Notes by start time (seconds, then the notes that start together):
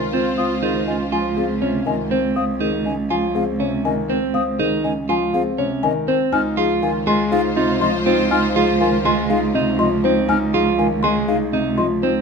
Already playing: C#2 D#3 F4 C5 G#5
0.13 C4 F4 C5
0.38 C4 F4 F5 D#6
0.63 D#3 D#4 F4 G#4
0.87 C#3 F4 D#5 G#5
1.12 F3 F4 G#5
1.37 C4 F4 G#4 F5
1.61 C3 C#4 F4 C#5
1.86 D#3 F4 D#5 G#5
2.11 C4 C5
2.36 C4 F5 D#6
2.60 D#3 D#4 G#4
2.85 C#3 D#5 G#5
3.10 F3 F4 G#5
3.35 C4 G#4 F5
3.60 C3 C#4 C#5
3.85 D#3 D#5 G#5
4.09 C4 C5
4.34 C4 F5 D#6
4.59 D#3 D#4 G#4
4.84 C#3 D#5 G#5
5.09 F3 F4 G#5
5.34 C4 G#4 F5
5.58 C3 C#4 C#5
5.83 D#3 D#5 G#5
6.08 C4 C5
6.33 C#2 D#4 F4 C5 G#5 F6
6.57 F3 F4 G#4
6.82 D#3 F4 F5 G#5
7.07 G#3 F4 G#4 C6
7.31 D#4 F4 G#4 F5
7.56 C3 D#4 F4 D#5
7.80 F3 F4 D#5 C6
8.06 C4 D#4 F4 C5
8.30 D#4 F4 G#5 F6
8.55 F3 F4 G#4
8.81 D#3 F4 F5 G#5
9.05 G#3 F4 G#4 C6
9.30 D#4 F4 G#4 F5
9.54 C3 D#4 F4 D#5
9.79 F3 F4 D#5 C6
10.04 C4 D#4 C5
10.29 D#4 G#5 F6
10.54 F3 F4 G#4
10.79 D#3 F5 G#5
11.03 G#3 G#4 C6
11.28 D#4 G#4 F5
11.53 C3 D#4 D#5
11.78 F3 D#5 C6
12.03 C4 D#4 C5